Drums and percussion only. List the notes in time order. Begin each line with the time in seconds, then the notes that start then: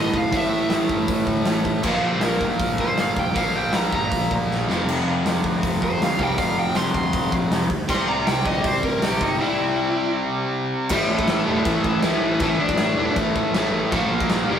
0.14 kick
0.32 kick, open hi-hat
0.70 snare, open hi-hat
0.89 kick
1.08 kick, open hi-hat
1.27 kick
1.45 snare, open hi-hat
1.65 kick
1.83 kick, crash
2.21 snare, open hi-hat
2.41 kick
2.60 kick, open hi-hat
2.78 kick
2.98 snare, open hi-hat
3.17 kick
3.36 kick, open hi-hat
3.73 snare, open hi-hat
3.92 kick
4.12 kick, open hi-hat
4.31 kick
4.51 snare
4.70 snare
4.88 crash
5.26 snare, open hi-hat
5.44 kick
5.63 kick, open hi-hat
5.82 kick
6.02 snare, open hi-hat
6.19 kick
6.38 kick, open hi-hat
6.75 snare, open hi-hat
6.95 kick
7.13 kick, open hi-hat
7.32 kick
7.52 snare, open hi-hat
7.70 kick
7.89 kick, crash
8.27 snare, open hi-hat
8.45 kick
8.64 kick, open hi-hat
8.83 kick
9.02 snare, open hi-hat
9.21 kick
10.89 kick, crash
11.19 kick
11.28 snare, crash
11.65 kick, crash
11.84 kick
12.03 snare, crash
12.40 kick, crash
12.69 kick
12.78 snare, crash
13.16 kick, crash
13.36 kick
13.54 snare, crash
13.92 kick, crash
14.21 kick
14.30 snare, crash